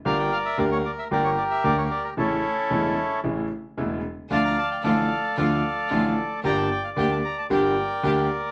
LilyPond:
<<
  \new Staff \with { instrumentName = "Bandoneon" } { \time 4/4 \key g \dorian \tempo 4 = 113 << { f''16 g''16 f''16 e''16 d''16 cis''16 d''16 e''16 d''16 cis''16 d''16 e''16 d''16 cis''16 d''16 bes'16 | a'2 r2 | a''16 bes''16 a''16 g''16 f''4 f''4. r8 | bes''16 a''16 g''16 f''16 g''16 a''16 bes''16 a''16 g''4. r8 | } \\ { <bes' d''>2 <g' bes'>2 | <cis' e'>2 r2 | <d'' f''>4 <a' d''>4 <a' d''>2 | <d'' g''>2 <bes' d''>2 | } >> }
  \new Staff \with { instrumentName = "String section" } { \time 4/4 \key g \dorian r1 | r1 | <a d' f'>8 r8 <a d' f'>8 r8 <a d' f'>8 r8 <a d' f'>8 r8 | <bes d' g'>8 r8 <bes d' g'>8 r8 <bes d' g'>8 r8 <bes d' g'>8 r8 | }
  \new Staff \with { instrumentName = "Grand piano" } { \clef bass \time 4/4 \key g \dorian <g,, g, d g bes g'>8 r8 <d, d g bes g'>8 r8 <g,, g, d g bes g'>8 r8 <d, d g bes g'>8 r8 | <a,, a, cis e a e'>8 r8 <e,, e, cis e a e'>8 r8 <a,, a, cis e a e'>8 r8 <e,, e, cis e a e'>8 r8 | <d, d f a f'>8 r8 <a,, a, d f a f'>8 r8 <d, d f a f'>8 r8 <a,, a, d f a f'>8 r8 | <g,, g, d g bes g'>8 r8 <d, d g bes g'>8 r8 <g,, g, d g bes g'>8 r8 <d, d g bes g'>8 r8 | }
>>